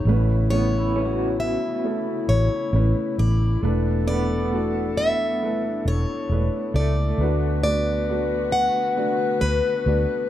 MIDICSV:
0, 0, Header, 1, 7, 480
1, 0, Start_track
1, 0, Key_signature, 3, "major"
1, 0, Tempo, 890472
1, 32, Time_signature, 4, 2, 24, 8
1, 5549, End_track
2, 0, Start_track
2, 0, Title_t, "Steel-string acoustic guitar"
2, 0, Program_c, 0, 25
2, 0, Note_on_c, 0, 73, 64
2, 250, Note_off_c, 0, 73, 0
2, 272, Note_on_c, 0, 73, 81
2, 731, Note_off_c, 0, 73, 0
2, 754, Note_on_c, 0, 76, 78
2, 1232, Note_off_c, 0, 76, 0
2, 1234, Note_on_c, 0, 73, 75
2, 1718, Note_off_c, 0, 73, 0
2, 1721, Note_on_c, 0, 74, 84
2, 2175, Note_off_c, 0, 74, 0
2, 2197, Note_on_c, 0, 74, 86
2, 2679, Note_off_c, 0, 74, 0
2, 2681, Note_on_c, 0, 76, 82
2, 3166, Note_off_c, 0, 76, 0
2, 3168, Note_on_c, 0, 73, 85
2, 3640, Note_off_c, 0, 73, 0
2, 3643, Note_on_c, 0, 74, 76
2, 4109, Note_off_c, 0, 74, 0
2, 4116, Note_on_c, 0, 74, 77
2, 4592, Note_off_c, 0, 74, 0
2, 4594, Note_on_c, 0, 78, 83
2, 5052, Note_off_c, 0, 78, 0
2, 5073, Note_on_c, 0, 71, 77
2, 5549, Note_off_c, 0, 71, 0
2, 5549, End_track
3, 0, Start_track
3, 0, Title_t, "Clarinet"
3, 0, Program_c, 1, 71
3, 33, Note_on_c, 1, 64, 68
3, 1954, Note_on_c, 1, 69, 88
3, 1962, Note_off_c, 1, 64, 0
3, 3729, Note_off_c, 1, 69, 0
3, 3880, Note_on_c, 1, 71, 106
3, 5549, Note_off_c, 1, 71, 0
3, 5549, End_track
4, 0, Start_track
4, 0, Title_t, "Felt piano"
4, 0, Program_c, 2, 0
4, 0, Control_c, 2, 64, 127
4, 39, Note_on_c, 2, 57, 80
4, 40, Control_c, 2, 64, 0
4, 41, Note_on_c, 2, 45, 57
4, 43, Note_on_c, 2, 61, 64
4, 44, Note_on_c, 2, 33, 59
4, 44, Note_on_c, 2, 64, 71
4, 47, Note_on_c, 2, 71, 90
4, 142, Control_c, 2, 64, 127
4, 217, Note_off_c, 2, 57, 0
4, 220, Note_off_c, 2, 61, 0
4, 220, Note_off_c, 2, 64, 0
4, 222, Note_off_c, 2, 71, 0
4, 278, Note_on_c, 2, 61, 60
4, 281, Note_on_c, 2, 57, 63
4, 284, Note_on_c, 2, 64, 58
4, 286, Note_on_c, 2, 71, 68
4, 457, Note_off_c, 2, 61, 0
4, 459, Note_off_c, 2, 57, 0
4, 460, Note_off_c, 2, 64, 0
4, 461, Note_off_c, 2, 71, 0
4, 517, Note_on_c, 2, 57, 56
4, 520, Note_on_c, 2, 61, 55
4, 525, Note_on_c, 2, 64, 60
4, 526, Note_on_c, 2, 71, 57
4, 879, Note_off_c, 2, 57, 0
4, 880, Note_off_c, 2, 61, 0
4, 882, Note_off_c, 2, 64, 0
4, 883, Note_off_c, 2, 71, 0
4, 992, Note_on_c, 2, 57, 55
4, 993, Note_on_c, 2, 61, 52
4, 997, Note_on_c, 2, 64, 56
4, 1000, Note_on_c, 2, 69, 70
4, 1356, Note_off_c, 2, 57, 0
4, 1356, Note_off_c, 2, 61, 0
4, 1359, Note_off_c, 2, 64, 0
4, 1360, Note_off_c, 2, 69, 0
4, 1472, Note_on_c, 2, 57, 61
4, 1480, Note_on_c, 2, 61, 56
4, 1480, Note_on_c, 2, 64, 58
4, 1485, Note_on_c, 2, 71, 72
4, 1836, Note_off_c, 2, 57, 0
4, 1840, Note_off_c, 2, 61, 0
4, 1840, Note_off_c, 2, 64, 0
4, 1843, Note_off_c, 2, 71, 0
4, 1935, Note_off_c, 2, 45, 0
4, 1937, Note_off_c, 2, 33, 0
4, 1956, Note_on_c, 2, 57, 75
4, 1959, Note_on_c, 2, 40, 57
4, 1959, Note_on_c, 2, 62, 78
4, 1961, Control_c, 2, 64, 0
4, 1962, Note_on_c, 2, 52, 54
4, 1962, Note_on_c, 2, 64, 81
4, 1966, Note_on_c, 2, 71, 86
4, 2070, Control_c, 2, 64, 127
4, 2136, Note_off_c, 2, 57, 0
4, 2138, Note_off_c, 2, 62, 0
4, 2139, Note_off_c, 2, 64, 0
4, 2141, Note_off_c, 2, 71, 0
4, 2193, Note_on_c, 2, 57, 62
4, 2198, Note_on_c, 2, 62, 57
4, 2198, Note_on_c, 2, 64, 53
4, 2203, Note_on_c, 2, 71, 71
4, 2375, Note_off_c, 2, 57, 0
4, 2377, Note_off_c, 2, 62, 0
4, 2377, Note_off_c, 2, 64, 0
4, 2380, Note_off_c, 2, 71, 0
4, 2436, Note_on_c, 2, 57, 58
4, 2439, Note_on_c, 2, 62, 56
4, 2442, Note_on_c, 2, 66, 65
4, 2443, Note_on_c, 2, 64, 52
4, 2798, Note_off_c, 2, 57, 0
4, 2800, Note_off_c, 2, 62, 0
4, 2801, Note_off_c, 2, 66, 0
4, 2802, Note_off_c, 2, 64, 0
4, 2926, Note_on_c, 2, 57, 58
4, 2928, Note_on_c, 2, 62, 58
4, 2928, Note_on_c, 2, 64, 60
4, 2934, Note_on_c, 2, 71, 70
4, 3283, Note_off_c, 2, 57, 0
4, 3284, Note_off_c, 2, 62, 0
4, 3284, Note_off_c, 2, 64, 0
4, 3287, Note_off_c, 2, 71, 0
4, 3405, Note_on_c, 2, 57, 65
4, 3405, Note_on_c, 2, 62, 60
4, 3408, Note_on_c, 2, 64, 61
4, 3413, Note_on_c, 2, 71, 72
4, 3763, Note_off_c, 2, 57, 0
4, 3763, Note_off_c, 2, 62, 0
4, 3764, Note_off_c, 2, 64, 0
4, 3766, Note_off_c, 2, 71, 0
4, 3855, Note_off_c, 2, 40, 0
4, 3856, Note_off_c, 2, 52, 0
4, 3881, Control_c, 2, 64, 0
4, 3886, Note_on_c, 2, 57, 80
4, 3890, Note_on_c, 2, 50, 58
4, 3891, Note_on_c, 2, 62, 80
4, 3893, Note_on_c, 2, 66, 67
4, 3896, Note_on_c, 2, 71, 82
4, 3965, Control_c, 2, 64, 127
4, 4062, Note_off_c, 2, 57, 0
4, 4064, Note_off_c, 2, 62, 0
4, 4065, Note_off_c, 2, 66, 0
4, 4067, Note_off_c, 2, 71, 0
4, 4121, Note_on_c, 2, 57, 69
4, 4126, Note_on_c, 2, 62, 56
4, 4127, Note_on_c, 2, 66, 58
4, 4130, Note_on_c, 2, 71, 72
4, 4299, Note_off_c, 2, 57, 0
4, 4301, Note_off_c, 2, 62, 0
4, 4302, Note_off_c, 2, 66, 0
4, 4303, Note_off_c, 2, 71, 0
4, 4367, Note_on_c, 2, 57, 58
4, 4367, Note_on_c, 2, 62, 60
4, 4372, Note_on_c, 2, 66, 57
4, 4374, Note_on_c, 2, 71, 71
4, 4723, Note_off_c, 2, 57, 0
4, 4724, Note_off_c, 2, 62, 0
4, 4726, Note_off_c, 2, 66, 0
4, 4727, Note_off_c, 2, 71, 0
4, 4834, Note_on_c, 2, 62, 58
4, 4835, Note_on_c, 2, 57, 65
4, 4840, Note_on_c, 2, 66, 64
4, 4844, Note_on_c, 2, 74, 71
4, 5197, Note_off_c, 2, 62, 0
4, 5198, Note_off_c, 2, 57, 0
4, 5200, Note_off_c, 2, 66, 0
4, 5202, Note_off_c, 2, 74, 0
4, 5316, Note_on_c, 2, 57, 58
4, 5321, Note_on_c, 2, 62, 61
4, 5321, Note_on_c, 2, 66, 64
4, 5324, Note_on_c, 2, 74, 74
4, 5549, Note_off_c, 2, 50, 0
4, 5549, Note_off_c, 2, 57, 0
4, 5549, Note_off_c, 2, 62, 0
4, 5549, Note_off_c, 2, 66, 0
4, 5549, Note_off_c, 2, 74, 0
4, 5549, End_track
5, 0, Start_track
5, 0, Title_t, "Clean electric guitar"
5, 0, Program_c, 3, 27
5, 273, Note_on_c, 3, 59, 49
5, 420, Note_on_c, 3, 64, 47
5, 516, Note_on_c, 3, 61, 47
5, 567, Note_off_c, 3, 64, 0
5, 569, Note_on_c, 3, 66, 45
5, 1108, Note_off_c, 3, 59, 0
5, 1350, Note_off_c, 3, 61, 0
5, 1376, Note_off_c, 3, 66, 0
5, 2195, Note_on_c, 3, 59, 68
5, 3029, Note_off_c, 3, 59, 0
5, 3634, Note_on_c, 3, 57, 56
5, 4092, Note_off_c, 3, 57, 0
5, 5549, End_track
6, 0, Start_track
6, 0, Title_t, "String section"
6, 0, Program_c, 4, 48
6, 0, Note_on_c, 4, 64, 69
6, 26, Note_on_c, 4, 57, 58
6, 30, Note_on_c, 4, 49, 68
6, 31, Note_on_c, 4, 59, 58
6, 1932, Note_off_c, 4, 49, 0
6, 1933, Note_off_c, 4, 59, 0
6, 1953, Note_on_c, 4, 59, 63
6, 1954, Note_on_c, 4, 62, 66
6, 2903, Note_off_c, 4, 59, 0
6, 2915, Note_on_c, 4, 59, 69
6, 3849, Note_off_c, 4, 64, 0
6, 3855, Note_off_c, 4, 62, 0
6, 3865, Note_off_c, 4, 59, 0
6, 3875, Note_on_c, 4, 50, 65
6, 3879, Note_on_c, 4, 66, 81
6, 3884, Note_on_c, 4, 59, 65
6, 5549, Note_off_c, 4, 50, 0
6, 5549, Note_off_c, 4, 57, 0
6, 5549, Note_off_c, 4, 59, 0
6, 5549, Note_off_c, 4, 66, 0
6, 5549, End_track
7, 0, Start_track
7, 0, Title_t, "Fingered electric bass"
7, 0, Program_c, 5, 33
7, 28, Note_on_c, 5, 33, 82
7, 840, Note_off_c, 5, 33, 0
7, 1231, Note_on_c, 5, 33, 74
7, 1333, Note_off_c, 5, 33, 0
7, 1470, Note_on_c, 5, 33, 91
7, 1573, Note_off_c, 5, 33, 0
7, 1716, Note_on_c, 5, 33, 66
7, 1917, Note_off_c, 5, 33, 0
7, 1953, Note_on_c, 5, 28, 87
7, 2763, Note_off_c, 5, 28, 0
7, 3155, Note_on_c, 5, 28, 73
7, 3255, Note_off_c, 5, 28, 0
7, 3392, Note_on_c, 5, 28, 83
7, 3494, Note_off_c, 5, 28, 0
7, 3633, Note_on_c, 5, 37, 74
7, 3836, Note_off_c, 5, 37, 0
7, 3871, Note_on_c, 5, 38, 83
7, 4682, Note_off_c, 5, 38, 0
7, 5074, Note_on_c, 5, 38, 65
7, 5175, Note_off_c, 5, 38, 0
7, 5316, Note_on_c, 5, 38, 82
7, 5416, Note_off_c, 5, 38, 0
7, 5549, End_track
0, 0, End_of_file